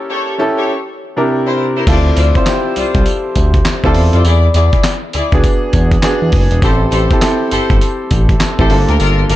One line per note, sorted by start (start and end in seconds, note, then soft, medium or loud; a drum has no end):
0.00 0.16 C#4 medium
0.00 0.17 E4 medium
0.00 0.17 G4 medium
0.00 0.17 A4 loud
0.09 0.28 G4 medium
0.09 0.28 A4 medium
0.09 0.29 C#5 medium
0.38 0.68 C#4 medium
0.38 0.68 E4 medium
0.38 0.69 G4 medium
0.38 0.69 A4 loud
0.57 0.70 G4 medium
0.57 0.70 A4 medium
0.57 0.70 C#5 medium
1.17 1.58 C3 medium
1.17 1.58 D4 medium
1.17 1.59 E4 medium
1.17 1.59 G4 medium
1.17 1.59 A#4 medium
1.46 1.59 E4 medium
1.46 1.59 A#4 medium
1.46 1.59 C5 medium
1.76 1.88 E4 medium
1.76 1.89 A#4 medium
1.76 1.86 C5 medium
1.87 2.11 D2 loud
1.87 2.15 C4 medium
1.87 2.15 E4 medium
1.87 2.06 F4 medium
1.87 2.15 F4 medium
1.87 2.15 A4 medium
1.87 2.07 C5 medium
1.87 2.07 D5 loud
1.87 kick loud
1.87 closed hi-hat medium
1.87 crash loud
1.87 tambourine medium
2.17 2.32 D2 loud
2.17 2.36 F4 medium
2.17 2.36 C5 medium
2.17 2.36 D5 medium
2.17 closed hi-hat medium
2.17 tambourine medium
2.35 2.42 C4 medium
2.35 2.42 E4 medium
2.35 2.42 F4 medium
2.35 2.43 C5 loud
2.35 kick loud
2.35 closed hi-hat soft
2.46 3.22 C4 medium
2.46 3.22 E4 medium
2.46 3.22 F4 medium
2.46 3.23 G4 loud
2.46 snare loud
2.46 clap loud
2.46 closed hi-hat medium
2.46 tambourine loud
2.76 2.84 C2 soft
2.76 2.96 F4 medium
2.76 2.96 C5 medium
2.76 2.96 D5 medium
2.76 closed hi-hat medium
2.76 tambourine medium
2.95 3.04 C2 medium
2.95 kick loud
2.95 closed hi-hat medium
3.06 closed hi-hat medium
3.06 tambourine medium
3.36 3.60 D2 medium
3.36 kick medium
3.36 closed hi-hat medium
3.36 tambourine medium
3.54 kick medium
3.54 closed hi-hat medium
3.65 snare loud
3.65 clap medium
3.65 closed hi-hat medium
3.65 tambourine medium
3.83 3.93 D2 medium
3.83 4.25 C4 loud
3.83 4.25 E4 medium
3.83 3.96 F4 medium
3.83 4.25 F4 medium
3.83 4.25 A4 loud
3.83 3.96 C5 medium
3.83 3.97 D5 medium
3.83 kick medium
3.94 4.10 E2 medium
3.94 open hi-hat medium
4.13 4.23 F2 loud
4.13 4.26 F4 medium
4.13 4.26 C5 medium
4.13 4.24 D5 medium
4.13 closed hi-hat medium
4.24 4.49 E2 loud
4.24 4.44 E4 medium
4.24 4.44 G#4 medium
4.24 4.44 D5 loud
4.24 closed hi-hat medium
4.24 tambourine medium
4.54 4.69 E2 loud
4.54 4.74 E4 medium
4.54 4.74 G#4 medium
4.54 4.74 D5 medium
4.54 closed hi-hat medium
4.54 tambourine medium
4.73 kick loud
4.73 closed hi-hat soft
4.84 snare loud
4.84 clap loud
4.84 closed hi-hat medium
4.84 tambourine loud
5.13 5.22 D2 soft
5.13 5.33 E4 medium
5.13 5.33 G#4 medium
5.13 5.33 D5 medium
5.13 closed hi-hat medium
5.13 tambourine medium
5.32 5.41 D2 medium
5.32 5.74 B3 medium
5.32 5.74 D4 medium
5.32 5.75 F#4 medium
5.32 5.75 G#4 medium
5.32 kick loud
5.32 closed hi-hat soft
5.44 kick loud
5.44 closed hi-hat medium
5.44 tambourine medium
5.73 5.97 E2 medium
5.73 kick medium
5.73 closed hi-hat medium
5.73 tambourine medium
5.92 kick medium
5.92 closed hi-hat medium
6.03 6.41 B3 medium
6.03 6.41 D4 medium
6.03 6.41 F#4 medium
6.03 6.41 G#4 loud
6.03 snare loud
6.03 clap loud
6.03 closed hi-hat medium
6.03 tambourine medium
6.22 6.31 E2 medium
6.32 6.48 F#1 medium
6.32 kick loud
6.32 open hi-hat medium
6.51 6.60 E1 loud
6.51 closed hi-hat medium
6.62 6.86 A1 loud
6.62 6.90 C4 medium
6.62 6.90 E4 medium
6.62 6.82 G4 medium
6.62 6.91 G4 medium
6.62 6.82 A4 medium
6.62 6.91 A4 loud
6.62 6.82 C5 loud
6.62 kick loud
6.62 closed hi-hat medium
6.62 tambourine medium
6.92 7.07 A1 medium
6.92 7.11 G4 medium
6.92 7.11 A4 medium
6.92 7.12 C5 medium
6.92 closed hi-hat medium
6.92 tambourine medium
7.10 7.17 C4 medium
7.10 7.17 E4 medium
7.10 7.18 G4 medium
7.10 7.18 A4 medium
7.10 kick loud
7.10 closed hi-hat soft
7.21 7.97 C4 medium
7.21 7.97 E4 medium
7.21 7.98 G4 medium
7.21 7.98 A4 loud
7.21 snare loud
7.21 clap loud
7.21 closed hi-hat medium
7.21 tambourine loud
7.51 7.59 G1 soft
7.51 7.71 G4 medium
7.51 7.71 A4 medium
7.51 7.71 C5 loud
7.51 closed hi-hat medium
7.51 tambourine medium
7.70 7.79 G1 medium
7.70 kick loud
7.70 closed hi-hat soft
7.81 closed hi-hat medium
7.81 tambourine medium
8.11 8.35 A1 loud
8.11 kick medium
8.11 closed hi-hat medium
8.11 tambourine medium
8.29 kick medium
8.29 closed hi-hat soft
8.40 snare loud
8.40 clap loud
8.40 closed hi-hat medium
8.40 tambourine medium
8.58 8.68 A1 medium
8.58 8.70 C4 medium
8.58 8.70 E4 medium
8.58 8.71 G4 medium
8.58 8.70 G4 medium
8.58 8.72 A4 medium
8.58 8.69 A4 loud
8.58 8.72 C5 medium
8.58 kick medium
8.70 8.85 G1 loud
8.70 9.36 A#3 medium
8.70 9.36 D4 medium
8.70 9.36 F4 medium
8.70 9.36 A4 loud
8.70 open hi-hat medium
8.88 8.98 D2 medium
8.88 8.98 F4 medium
8.88 8.99 G4 medium
8.88 8.99 A#4 medium
8.88 closed hi-hat medium
8.99 9.24 G1 loud
8.99 9.19 F4 medium
8.99 9.19 G4 medium
8.99 9.20 A#4 loud
8.99 closed hi-hat medium
8.99 tambourine medium
9.29 9.36 G1 loud
9.29 9.36 F4 medium
9.29 9.36 G4 medium
9.29 9.36 A#4 medium
9.29 closed hi-hat medium
9.29 tambourine medium